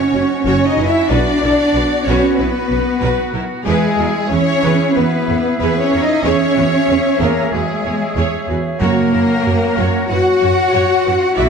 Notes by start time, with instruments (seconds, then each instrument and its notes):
Already playing: french horn section C#4, cello section C#4, woodwind section C#4 F#4 C#5 F#5, violin section C#5, flute section C#5
0.13 double bass section F#1, viola section F#4 C#5
0.43 double bass section F#1, french horn section C#4, cello section C#4, viola section F#4 C#5, violin section C#5, flute section C#5
0.65 french horn section D#4, cello section D#4, violin section D#5, flute section D#5
0.77 double bass section F#1, viola section E4 B4
0.85 french horn section E4, cello section E4, violin section E5, flute section E5
1.07 double bass section B1, woodwind section B3, french horn section D4, cello section D4, viola section F#4 B4, flute section D5, violin section D5
1.43 double bass section B1, viola section E4 A#4
1.74 double bass section B1, viola section F#4 B4
2.05 double bass section B1, french horn section C#4, cello section C#4, viola section F#4 B4, violin section C#5, flute section C#5
2.36 double bass section B1, french horn section B3, cello section B3, viola section E4 B4, violin section B4, flute section B4
2.71 double bass section B1, viola section F#4 B4
3.02 double bass section B1, viola section F#4 B4
3.33 double bass section B1, viola section E4 A#4
3.64 double bass section E2, french horn section G#3, cello section G#3, woodwind section E4 G#4 E5, violin section G#4, flute section G#4, viola section G#4 B4
3.98 double bass section E2, viola section F#4 A#4
4.29 double bass section E2, cello section C#4, french horn section C#4, viola section G#4 B4, violin section C#5, flute section C#5
4.64 double bass section E2, viola section G#4 B4
4.95 double bass section E2, cello section B3, french horn section B3, viola section F#4 B4, violin section B4, flute section B4
5.29 double bass section E2, viola section G#4 B4
5.58 double bass section E2, french horn section B3, cello section B3, viola section G#4 B4, flute section B4, violin section B4
5.80 cello section C#4, french horn section C#4, violin section C#5, flute section C#5
5.92 double bass section E2, viola section F#4 A#4
6.01 cello section D#4, french horn section D#4, violin section D#5, flute section D#5
6.22 double bass section E2, cello section C#4, woodwind section C#4 C#5, french horn section C#4, violin section C#5, flute section C#5, viola section C#5
6.26 viola section G#4
6.57 double bass section E2, viola section F#4 B4
6.89 double bass section E2, viola section G#4 C#5
7.19 double bass section E2, cello section A#3, french horn section A#3, viola section G#4 C#5, violin section A#4, flute section A#4
7.51 double bass section E2, cello section G#3, french horn section G#3, viola section F#4 B4, violin section G#4, flute section G#4
7.85 double bass section E2, viola section G#4 C#5
8.16 double bass section E2, viola section G#4 C#5
8.49 double bass section E2, viola section F#4 B4
8.78 double bass section F#2, timpani F#2, cello section A#3, woodwind section F#4 F#5, viola section F#4 C#5, violin section A#4, flute section A#4
8.82 french horn section A#3
9.13 double bass section F#2, viola section E4 A#4
9.45 double bass section F#2, viola section F#4 C#5
9.77 double bass section F#2, viola section F#4 C#5
10.08 double bass section F#2, viola section E4 B4, cello section F#4, french horn section F#4, violin section F#5, flute section F#5
10.42 double bass section F#2, viola section F#4 C#5
10.74 double bass section F#2, viola section F#4 C#5
11.05 double bass section F#2, viola section E4 B4
11.35 double bass section B1, woodwind section D4 B4, cello section E4, french horn section E4, viola section F#4 D5, violin section E5, flute section E5